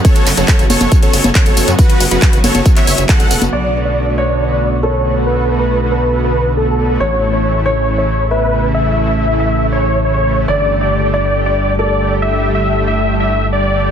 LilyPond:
<<
  \new Staff \with { instrumentName = "Grand piano" } { \time 4/4 \key b \minor \tempo 4 = 138 r1 | r1 | d''4. cis''4. a'4~ | a'1 |
cis''4. cis''4. e''4~ | e''1 | d''4. d''4. a'4~ | a'1 | }
  \new Staff \with { instrumentName = "Supersaw synth" } { \time 4/4 \key b \minor <a' cis''>8 r16 <a' cis''>8 r16 <a' cis''>8 r16 <a' cis''>8 r16 <a' cis''>8. r16 | <fis' b'>8 r16 <fis' b'>8 r16 <a' cis''>8 r16 <cis'' e''>8 r16 <a' fis''>8. r16 | d''8 r16 d''8 r16 d''8 r16 d''8 r16 cis''8. r16 | b'8 r16 b'8 r16 b'8 r16 b'8 r16 a'8. r16 |
cis''8 r16 cis''8 r16 cis''8 r16 cis''8 r16 b'8. r16 | e''8 r16 e''8 r16 e''8 r16 cis''8 r16 cis''8. r16 | d''8 r16 d''8 r16 d''8 r16 d''8 r16 d''8. r16 | e''8 r16 e''8 r16 e''8 r16 e''8 r16 d''8. r16 | }
  \new Staff \with { instrumentName = "Analog synth pad" } { \time 4/4 \key b \minor <cis fis b fis'>16 <cis fis b fis'>16 <cis fis b fis'>8 <cis fis b fis'>16 <cis fis b fis'>8 r16 <cis fis b fis'>8 r8 <cis fis b fis'>8 <cis fis b fis'>16 <cis fis b fis'>16 | <cis fis b fis'>16 <cis fis b fis'>16 <cis fis b fis'>8 <cis fis b fis'>16 <cis fis b fis'>8 r16 <cis fis b fis'>8 r8 <cis fis b fis'>8 <cis fis b fis'>16 <cis fis b fis'>16 | <d a b fis'>16 <d a b fis'>16 <d a b fis'>8 <d a b fis'>16 <d a b fis'>8 r16 <d a b fis'>8 r8 <d a b fis'>8 <d a b fis'>16 <d a b fis'>16 | <d a b fis'>16 <d a b fis'>16 <d a b fis'>8 <d a b fis'>16 <d a b fis'>8 r16 <d a b fis'>8 r8 <d a b fis'>8 <d a b fis'>16 <d a b fis'>16 |
<cis e a e'>16 <cis e a e'>16 <cis e a e'>8 <cis e a e'>16 <cis e a e'>8 r16 <cis e a e'>8 r8 <cis e a e'>8 <cis e a e'>16 <cis e a e'>16 | <cis e a e'>16 <cis e a e'>16 <cis e a e'>8 <cis e a e'>16 <cis e a e'>8 r16 <cis e a e'>8 r8 <cis e a e'>8 <cis e a e'>16 <cis e a e'>16 | <d g a g'>16 <d g a g'>16 <d g a g'>8 <d g a g'>16 <d g a g'>8 r16 <d g a g'>8 r8 <d g a g'>8 <d g a g'>16 <d g a g'>16 | <d g a g'>16 <d g a g'>16 <d g a g'>8 <d g a g'>16 <d g a g'>8 r16 <d g a g'>8 r8 <d g a g'>8 <d g a g'>16 <d g a g'>16 | }
  \new Staff \with { instrumentName = "Analog synth bass" } { \clef bass \time 4/4 \key b \minor r8 fis,,16 fis,,16 r16 fis,,16 fis,,16 fis,,16 r8 fis,,16 fis,,16 r16 fis,,16 fis,,16 fis,16 | r8 fis,,16 fis,,16 r16 fis,,16 fis,,16 fis,,16 r8 fis,,16 fis,,16 r16 fis,,16 e,,16 fis,,16 | b,,1~ | b,,1 |
a,,1~ | a,,1 | g,,1~ | g,,1 | }
  \new DrumStaff \with { instrumentName = "Drums" } \drummode { \time 4/4 <hh bd tamb>16 <hh tamb>16 <hc hho tamb>16 <hh tamb>16 <hc hh bd tamb>16 <hh tamb>16 <cgho hho tamb>16 <cgho hh tamb>16 <hh bd tamb>16 <hh tamb>16 <hho tamb>16 <cgho hh tamb>16 <hc hh bd tamb>16 <hh tamb>16 <hho tamb>16 <hh tamb>16 | <hh bd tamb>16 <hh tamb>16 <hho tamb>16 <hh tamb>16 <hc hh bd tamb>16 <hh tamb>16 <cgho hho tamb>16 <cgho hh tamb>16 <hh bd tamb>16 <hc hh tamb>16 <hho tamb>16 <hh tamb>16 <hc hh bd tamb>16 <hh tamb>16 <hho tamb>16 <cgho hh tamb>16 | cymc4 r4 r4 r4 | r4 r4 r4 r4 |
r4 r4 r4 r4 | r4 r4 r4 r4 | r4 r4 r4 r4 | r4 r4 r4 r4 | }
>>